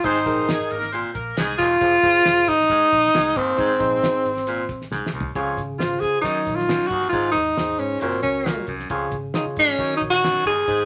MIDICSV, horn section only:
0, 0, Header, 1, 2, 480
1, 0, Start_track
1, 0, Tempo, 443131
1, 42, Time_signature, 4, 2, 24, 8
1, 11754, End_track
2, 0, Start_track
2, 0, Title_t, "Horn section"
2, 0, Program_c, 0, 61
2, 45, Note_on_c, 0, 72, 126
2, 54, Note_on_c, 0, 60, 111
2, 496, Note_off_c, 0, 72, 0
2, 500, Note_off_c, 0, 60, 0
2, 530, Note_on_c, 0, 56, 81
2, 534, Note_on_c, 0, 68, 94
2, 719, Note_off_c, 0, 56, 0
2, 722, Note_off_c, 0, 68, 0
2, 758, Note_on_c, 0, 58, 93
2, 760, Note_on_c, 0, 70, 109
2, 952, Note_off_c, 0, 58, 0
2, 954, Note_off_c, 0, 70, 0
2, 994, Note_on_c, 0, 72, 96
2, 995, Note_on_c, 0, 60, 82
2, 1190, Note_off_c, 0, 72, 0
2, 1191, Note_off_c, 0, 60, 0
2, 1238, Note_on_c, 0, 70, 100
2, 1243, Note_on_c, 0, 58, 88
2, 1432, Note_off_c, 0, 70, 0
2, 1436, Note_off_c, 0, 58, 0
2, 1485, Note_on_c, 0, 68, 105
2, 1489, Note_on_c, 0, 56, 92
2, 1823, Note_off_c, 0, 68, 0
2, 1825, Note_off_c, 0, 56, 0
2, 11754, End_track
0, 0, End_of_file